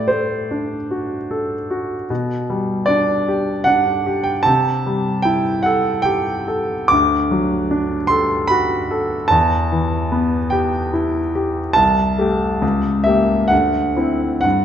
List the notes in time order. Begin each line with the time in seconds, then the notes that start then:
Already playing: A2 D5
0.08 A3 C5
0.51 D4
0.91 F#4
1.31 A4
1.70 F#4
2.10 B2
2.50 G3
2.86 D4 D5
3.28 G4
3.64 D4 F#5
4.06 G4
4.24 G5
4.43 C3 A5
4.86 G3
5.22 E4 G5
5.63 A4 F#5
6.02 G4 G5
6.48 A4
6.88 D2 D6
7.31 F#3
7.71 D4
8.07 A4 C6
8.47 F#4 B5
8.91 A4
9.28 E2 A5
9.72 E3
10.12 B3
10.50 G4 G5
10.93 E4
11.35 G4
11.73 C2 A5
12.18 A3 G4
12.62 C#2
13.04 A#3 G4 E5
13.48 D2 F#5
13.96 C4 E4
14.41 G2 F#5